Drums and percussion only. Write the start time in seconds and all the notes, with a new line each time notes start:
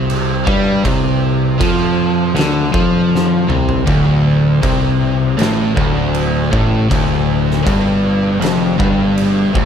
0.10 crash
0.47 kick
0.85 kick, crash
1.61 kick, crash
2.36 snare, crash
2.74 kick
3.15 snare
3.50 mid tom
3.69 floor tom
3.87 kick, crash
4.63 kick, crash
5.39 snare, crash
5.77 kick
6.15 crash
6.53 kick
6.91 kick, crash
7.51 snare
7.67 kick, crash
8.42 snare, crash
8.80 kick
9.18 crash
9.55 kick